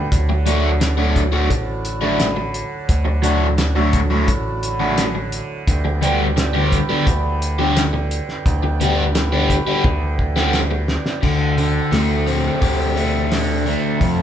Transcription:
Already playing: D2 A2 D3 D4
0.10 D2 F#3 A4 F#5, kick, closed hi-hat
0.25 D3, muted overdriven electric guitar stroke
0.46 F#3 A3 D4 F#4, closed hi-hat
0.80 muted overdriven electric guitar stroke, snare, closed hi-hat, tambourine
0.88 D2
0.97 F#3 A3 D4 F#4
1.16 kick, closed hi-hat
1.32 F#3 A3 D4 F#4
1.49 A1 A2, muted overdriven electric guitar stroke, kick, closed hi-hat
1.85 closed hi-hat
2.01 F#3 A3 D4 F#4
2.13 D3
2.20 snare, closed hi-hat, tambourine
2.36 muted overdriven electric guitar stroke
2.54 closed hi-hat
2.74 D3
2.89 D2, kick, closed hi-hat
3.05 muted overdriven electric guitar stroke
3.23 F#3 A3 D4 F#4, closed hi-hat
3.58 muted overdriven electric guitar stroke, snare, closed hi-hat, tambourine
3.76 F#3 A3 D4 F#4
3.93 kick, closed hi-hat
3.98 A2
4.10 F#3 A3 D4 F#4
4.28 A1, muted overdriven electric guitar stroke, kick, closed hi-hat
4.63 D3, closed hi-hat
4.80 F#3 A3 D4 F#4
4.97 snare, closed hi-hat, tambourine
5.15 muted overdriven electric guitar stroke
5.25 D3
5.32 closed hi-hat
5.66 D2 G3 B4 G5, kick, closed hi-hat
5.85 D2, muted overdriven electric guitar stroke
6.01 D3 G3 B3 G4, closed hi-hat
6.36 muted overdriven electric guitar stroke, snare, closed hi-hat, tambourine
6.50 A2
6.54 D3 G3 B3 G4
6.72 kick, closed hi-hat
6.89 D3 G3 B3 G4
7.07 D2, muted overdriven electric guitar stroke, kick, closed hi-hat
7.12 D3
7.42 closed hi-hat
7.59 D3 G3 B3 G4
7.73 D3, snare, closed hi-hat, tambourine
7.93 muted overdriven electric guitar stroke
8.11 closed hi-hat
8.29 snare
8.37 D2
8.46 D2, kick, closed hi-hat
8.63 muted overdriven electric guitar stroke
8.80 D3 G3 B3 G4, closed hi-hat
8.98 A2
9.15 muted overdriven electric guitar stroke, snare, closed hi-hat, tambourine
9.32 D3 G3 B3 G4
9.50 kick, closed hi-hat
9.60 D3
9.67 D3 G3 B3 G4
9.84 D2, muted overdriven electric guitar stroke, kick, high tom
10.19 D3, kick
10.36 D3 G3 B3 G4, snare
10.53 snare, tambourine
10.71 muted overdriven electric guitar stroke
10.84 D2
10.88 snare
11.06 snare
11.22 D2 D3 A3 D4 C5 G5, kick, crash
11.58 D3, open hi-hat
11.92 D2 A3, snare, open hi-hat
12.27 C4, open hi-hat
12.61 D2 G4, kick, open hi-hat
12.96 A3, open hi-hat
13.31 D3, snare, open hi-hat
13.66 A3, open hi-hat
14.00 F2 F4 F5, kick, open hi-hat

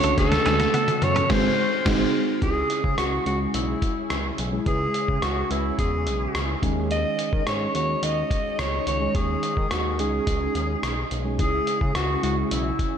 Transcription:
Already playing: D3 A3 C#4 D4 F#4 A4 C#5
0.04 C#2 A3, closed hi-hat
0.18 D2 A4, kick, snare, closed hi-hat
0.32 muted clean electric guitar stroke, snare, closed hi-hat
0.46 D2 G#3, snare, closed hi-hat
0.60 A3, snare, closed hi-hat
0.74 B3, closed hi-hat, high tom
0.88 muted clean electric guitar stroke, closed hi-hat, high tom
1.02 F#2 C#5, closed hi-hat, high tom
1.16 C#4, closed hi-hat, mid tom
1.29 G#1 G#2 G#3 C4 D#4 F#4 G#4 C5, kick, snare, crash
1.85 G#1 G#3 C4 D#4 F#4 G#4, kick, snare, crash
2.42 C#2 C#3 G#3 C#4 E4 G#4, kick, closed hi-hat
2.70 closed hi-hat
2.84 C#3, kick
2.98 C#2 F#4, cross-stick, closed hi-hat
3.26 C#2 G#3 C#4 E4 F#4 G#4, closed hi-hat
3.54 B1 E4, closed hi-hat
3.82 kick, closed hi-hat
4.10 C#2, cross-stick, closed hi-hat
4.38 B1, closed hi-hat
4.52 G#3 C#4 E4 G#4
4.66 C#2 C#3 G#3 C#4 E4 G#4 B4, kick, closed hi-hat
4.94 closed hi-hat
5.08 C#3, kick
5.22 C#2 F#4, cross-stick, closed hi-hat
5.50 C#2 G#3 C#4 E4 B4, closed hi-hat
5.79 E2 G#4, kick, closed hi-hat
6.06 B1, closed hi-hat
6.35 C#2, cross-stick, closed hi-hat
6.62 D#2 D#3 G#3 C#4 D#4 G#4, kick, closed hi-hat
6.91 D#5, closed hi-hat
7.19 closed hi-hat
7.33 D#3, kick
7.47 G#2 C#5, cross-stick, closed hi-hat
7.74 D#2 G#3 C#4 D#4 F#4 C#5, closed hi-hat
8.02 D#2 D#5, closed hi-hat
8.31 kick, closed hi-hat
8.59 C#2 C#5, cross-stick, closed hi-hat
8.87 C#2 D#3 C#5, closed hi-hat
9.00 G#3 C#4 D#4 G#4
9.14 D#2 G#3 C#4 D#4 G#4, kick, closed hi-hat
9.43 closed hi-hat
9.57 D#3, kick
9.71 D#2 F#4, cross-stick, closed hi-hat
9.98 C#2 G#3 C#4 D#4 G#4, closed hi-hat
10.27 C#2, kick, closed hi-hat
10.55 D#2, closed hi-hat
10.83 B1, cross-stick, closed hi-hat
11.11 B1, closed hi-hat
11.24 G#3 C#4 D#4 G#4
11.38 C#2 C#3 G#3 C#4 E4 G#4, kick, closed hi-hat
11.67 closed hi-hat
11.81 C#3, kick
11.95 C#2 F#4, cross-stick, closed hi-hat
12.22 C#2 G#3 C#4 E4 F#4 G#4, closed hi-hat
12.51 B1 E4, closed hi-hat
12.79 kick, closed hi-hat

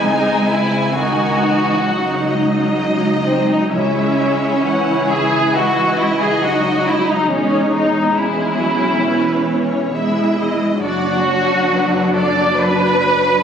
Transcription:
Already playing: G#3 G#5
0.01 C#2 C#3 C4 D#4
0.48 E4
0.93 D#3 D#4 F#4
1.40 E3
1.84 F#3 D#4 F#5
2.31 D#5
3.25 C4
3.49 D#4
3.72 C#2 C#3 G#3 C#4 E4 E5
4.64 E3 E4 F#5
5.08 G#4 E5
5.54 F#4 D#5
6.00 E4
6.22 G#4
6.43 F#3 D#4 F#4
6.87 E4
7.10 D#4
7.31 E1 E2 G#3 C#4 C#5
7.75 D#4
8.18 G#3 C#4 E4 G#4
8.61 F#3
9.05 E3 B4
9.50 C#5
9.94 G#3 E4 E5
10.39 D#5
10.81 F#1 F#2 F#3 D4 F#4 D5
11.26 C#5
11.70 B4
12.15 A4 D5
12.59 B4 D5
13.04 C#5

